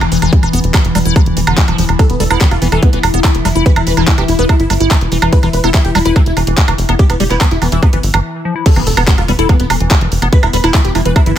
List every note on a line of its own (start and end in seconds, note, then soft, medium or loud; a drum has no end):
0.00 0.09 F1 medium
0.00 8.24 E3 medium
0.00 2.01 B3 medium
0.00 closed hi-hat medium
0.00 high woodblock medium
0.12 0.19 F1 medium
0.12 0.18 E3 medium
0.12 open hi-hat loud
0.22 0.30 F1 medium
0.22 0.32 E3 medium
0.22 closed hi-hat medium
0.22 high woodblock soft
0.33 kick loud
0.33 closed hi-hat medium
0.43 0.50 E1 medium
0.43 0.49 E3 medium
0.43 closed hi-hat medium
0.43 high woodblock soft
0.53 0.61 E1 loud
0.53 0.60 B3 loud
0.53 open hi-hat loud
0.64 0.71 E1 loud
0.64 closed hi-hat medium
0.74 kick loud
0.74 clap loud
0.74 closed hi-hat medium
0.74 high woodblock medium
0.85 0.92 E1 medium
0.85 closed hi-hat medium
0.95 1.03 E1 loud
0.95 0.99 G3 loud
0.95 open hi-hat loud
0.95 high woodblock soft
1.05 1.13 E1 medium
1.05 1.15 E4 loud
1.05 closed hi-hat medium
1.16 1.22 E3 medium
1.16 kick loud
1.16 closed hi-hat medium
1.16 high woodblock soft
1.26 1.34 E1 medium
1.26 closed hi-hat medium
1.37 1.44 E1 loud
1.37 1.41 E3 medium
1.37 open hi-hat loud
1.47 1.55 F1 medium
1.47 1.57 D3 medium
1.47 closed hi-hat medium
1.47 high woodblock medium
1.58 kick loud
1.58 clap loud
1.58 closed hi-hat medium
1.68 1.75 E1 medium
1.68 1.77 F3 medium
1.68 closed hi-hat medium
1.68 high woodblock soft
1.78 1.86 E1 loud
1.78 1.85 F3 medium
1.78 open hi-hat loud
1.89 1.96 E1 medium
1.89 closed hi-hat medium
1.89 high woodblock soft
1.99 8.26 E4 medium
1.99 2.04 A4 loud
1.99 kick loud
1.99 closed hi-hat medium
1.99 high woodblock soft
2.10 2.17 E1 medium
2.10 2.14 B3 medium
2.10 closed hi-hat medium
2.20 2.28 E1 loud
2.20 2.24 G3 loud
2.20 2.25 A4 medium
2.20 open hi-hat loud
2.30 2.38 E1 medium
2.30 2.35 B3 medium
2.30 2.40 E4 loud
2.30 closed hi-hat medium
2.30 high woodblock medium
2.41 2.47 E3 medium
2.41 2.46 B3 medium
2.41 kick loud
2.41 clap loud
2.41 closed hi-hat medium
2.51 2.59 E1 medium
2.51 2.56 F4 medium
2.51 closed hi-hat medium
2.51 high woodblock soft
2.62 2.69 E1 loud
2.62 2.68 E3 medium
2.62 2.67 B3 medium
2.62 open hi-hat medium
2.72 2.80 E1 loud
2.72 2.82 E3 medium
2.72 2.77 A4 loud
2.72 closed hi-hat medium
2.72 high woodblock soft
2.83 2.87 B3 medium
2.83 kick loud
2.83 closed hi-hat medium
2.93 3.00 E1 medium
2.93 2.99 E3 medium
2.93 2.98 B3 medium
2.93 closed hi-hat medium
3.03 3.11 E1 loud
3.03 open hi-hat loud
3.03 high woodblock medium
3.14 3.21 E1 medium
3.14 3.20 B3 loud
3.14 closed hi-hat medium
3.24 kick loud
3.24 clap loud
3.24 closed hi-hat medium
3.24 high woodblock soft
3.35 3.42 F1 medium
3.35 closed hi-hat medium
3.45 3.53 F1 loud
3.45 3.49 G3 loud
3.45 open hi-hat medium
3.45 high woodblock soft
3.55 3.63 F1 medium
3.55 3.65 E4 loud
3.55 closed hi-hat medium
3.66 3.72 E3 medium
3.66 3.71 B4 loud
3.66 kick loud
3.66 closed hi-hat medium
3.76 3.84 E1 medium
3.76 3.81 E4 medium
3.76 closed hi-hat medium
3.76 high woodblock medium
3.87 3.94 E1 loud
3.87 3.93 E3 medium
3.87 3.92 B4 medium
3.87 open hi-hat loud
3.97 4.05 E1 medium
3.97 4.07 E3 medium
3.97 4.02 E4 medium
3.97 closed hi-hat medium
3.97 high woodblock soft
4.08 4.12 E4 medium
4.08 kick loud
4.08 clap loud
4.08 closed hi-hat medium
4.18 4.25 E1 medium
4.18 4.24 E3 medium
4.18 4.23 G4 medium
4.18 closed hi-hat medium
4.18 high woodblock soft
4.28 4.36 E1 loud
4.28 4.33 E4 medium
4.28 open hi-hat medium
4.39 4.46 E1 medium
4.39 4.45 B3 loud
4.39 4.44 B4 medium
4.39 closed hi-hat medium
4.49 4.54 E4 medium
4.49 kick loud
4.49 closed hi-hat medium
4.49 high woodblock medium
4.60 4.67 G1 medium
4.60 4.64 E4 medium
4.60 closed hi-hat medium
4.70 4.78 G1 loud
4.70 4.74 G3 loud
4.70 open hi-hat loud
4.70 high woodblock soft
4.80 4.88 G1 loud
4.80 4.90 E4 loud
4.80 closed hi-hat medium
4.91 4.97 E3 medium
4.91 kick loud
4.91 clap loud
4.91 closed hi-hat medium
4.91 high woodblock soft
5.01 5.09 E1 medium
5.01 closed hi-hat medium
5.12 5.19 E1 medium
5.12 5.18 E3 medium
5.12 open hi-hat medium
5.22 5.30 E1 medium
5.22 5.32 E3 medium
5.22 closed hi-hat medium
5.22 high woodblock medium
5.32 5.37 B4 loud
5.32 kick loud
5.32 closed hi-hat medium
5.43 5.50 E1 medium
5.43 5.49 E3 medium
5.43 5.48 E4 medium
5.43 closed hi-hat medium
5.43 high woodblock soft
5.53 5.61 E1 loud
5.53 5.58 B4 medium
5.53 open hi-hat loud
5.64 5.71 E1 loud
5.64 5.70 B3 loud
5.64 5.69 E4 medium
5.64 closed hi-hat medium
5.64 high woodblock soft
5.74 5.79 E4 medium
5.74 kick loud
5.74 clap loud
5.74 closed hi-hat medium
5.85 5.92 E1 medium
5.85 5.89 G4 medium
5.85 closed hi-hat medium
5.95 6.03 E1 medium
5.95 5.99 G3 loud
5.95 6.00 E4 medium
5.95 open hi-hat medium
5.95 high woodblock medium
6.05 6.13 E1 loud
6.05 6.15 E4 loud
6.05 6.10 B4 loud
6.05 closed hi-hat medium
6.16 6.22 E3 medium
6.16 6.21 E4 medium
6.16 kick loud
6.16 closed hi-hat medium
6.16 high woodblock soft
6.26 6.34 E1 medium
6.26 6.31 E4 medium
6.26 closed hi-hat medium
6.37 6.44 E1 loud
6.37 6.43 E3 medium
6.37 open hi-hat loud
6.37 high woodblock soft
6.47 6.55 E1 medium
6.47 6.57 E3 medium
6.47 closed hi-hat medium
6.58 kick loud
6.58 clap loud
6.58 closed hi-hat medium
6.68 6.75 F1 medium
6.68 6.74 E3 medium
6.68 closed hi-hat medium
6.68 high woodblock medium
6.78 6.86 F1 loud
6.78 open hi-hat medium
6.89 6.96 F1 medium
6.89 6.95 B3 loud
6.89 closed hi-hat medium
6.89 high woodblock soft
6.99 7.04 G4 loud
6.99 kick loud
6.99 closed hi-hat medium
7.10 7.17 E1 medium
7.10 7.14 B3 medium
7.10 closed hi-hat medium
7.10 high woodblock soft
7.20 7.28 E1 loud
7.20 7.24 G3 loud
7.20 7.25 G4 medium
7.20 open hi-hat loud
7.30 7.38 E1 medium
7.30 7.35 B3 medium
7.30 7.40 E4 loud
7.30 clap soft
7.30 closed hi-hat medium
7.41 7.47 E3 medium
7.41 7.46 B3 medium
7.41 kick loud
7.41 clap loud
7.41 closed hi-hat medium
7.41 high woodblock medium
7.51 7.59 E1 medium
7.51 7.56 E4 medium
7.51 closed hi-hat medium
7.62 7.69 E1 loud
7.62 7.68 E3 medium
7.62 7.66 B3 medium
7.62 open hi-hat medium
7.62 high woodblock soft
7.72 7.80 E1 loud
7.72 7.82 E3 medium
7.72 7.77 E4 medium
7.72 closed hi-hat medium
7.83 7.87 B3 medium
7.83 kick loud
7.83 closed hi-hat medium
7.83 high woodblock soft
7.93 8.00 G1 medium
7.93 7.99 E3 medium
7.93 7.98 B3 medium
7.93 closed hi-hat medium
8.03 8.11 G1 loud
8.03 open hi-hat loud
8.14 8.21 G1 medium
8.14 8.20 E3 medium
8.14 closed hi-hat medium
8.14 high woodblock medium
8.45 8.55 F3 medium
8.56 8.65 E4 medium
8.66 11.38 E3 medium
8.66 11.38 B3 medium
8.66 8.71 A4 loud
8.66 kick loud
8.66 closed hi-hat medium
8.66 crash loud
8.66 impact medium
8.76 8.84 E1 medium
8.76 8.83 E3 medium
8.76 8.81 B3 medium
8.76 closed hi-hat medium
8.76 high woodblock soft
8.87 8.94 E1 loud
8.87 8.91 A4 medium
8.87 open hi-hat loud
8.97 9.05 E1 medium
8.97 9.02 B3 medium
8.97 9.03 B3 loud
8.97 closed hi-hat medium
8.97 high woodblock medium
9.08 9.12 B3 medium
9.08 kick loud
9.08 clap loud
9.08 closed hi-hat medium
9.18 9.25 E1 medium
9.18 9.23 F4 medium
9.18 closed hi-hat medium
9.18 high woodblock soft
9.28 9.36 E1 loud
9.28 9.32 G3 loud
9.28 9.33 B3 medium
9.28 open hi-hat medium
9.39 9.46 E1 medium
9.39 9.48 E4 loud
9.39 9.44 A4 loud
9.39 closed hi-hat medium
9.49 9.56 E3 medium
9.49 9.54 B3 medium
9.49 kick loud
9.49 closed hi-hat medium
9.49 high woodblock soft
9.60 9.67 E1 medium
9.60 9.64 B3 medium
9.60 closed hi-hat medium
9.70 9.78 E1 loud
9.70 9.76 E3 medium
9.70 open hi-hat loud
9.70 high woodblock medium
9.80 9.88 E1 medium
9.80 9.90 E3 medium
9.80 closed hi-hat medium
9.91 kick loud
9.91 clap loud
9.91 closed hi-hat medium
9.91 high woodblock soft
10.01 10.09 F1 medium
10.01 10.08 E3 medium
10.01 closed hi-hat medium
10.12 10.19 F1 loud
10.12 open hi-hat loud
10.22 10.30 F1 loud
10.22 10.28 B3 loud
10.22 closed hi-hat medium
10.22 high woodblock soft
10.32 10.37 B4 loud
10.32 kick loud
10.32 closed hi-hat medium
10.43 10.50 E1 medium
10.43 10.48 E4 medium
10.43 closed hi-hat medium
10.43 high woodblock medium
10.53 10.61 E1 loud
10.53 10.57 G3 loud
10.53 10.58 B4 medium
10.53 open hi-hat loud
10.64 10.71 E1 medium
10.64 10.69 E4 medium
10.64 10.73 E4 loud
10.64 closed hi-hat medium
10.64 high woodblock soft
10.74 10.81 E3 medium
10.74 10.79 E4 medium
10.74 kick loud
10.74 clap loud
10.74 closed hi-hat medium
10.85 10.92 E1 medium
10.85 10.89 G4 medium
10.85 closed hi-hat medium
10.95 11.03 E1 loud
10.95 11.01 E3 medium
10.95 11.00 E4 medium
10.95 open hi-hat loud
10.95 high woodblock soft
11.05 11.13 E1 loud
11.05 11.15 E3 medium
11.05 11.10 B4 loud
11.05 closed hi-hat medium
11.16 11.21 E4 medium
11.16 kick loud
11.16 closed hi-hat medium
11.16 high woodblock medium
11.26 11.34 G1 medium
11.26 11.33 E3 medium
11.26 11.31 E4 medium
11.26 closed hi-hat medium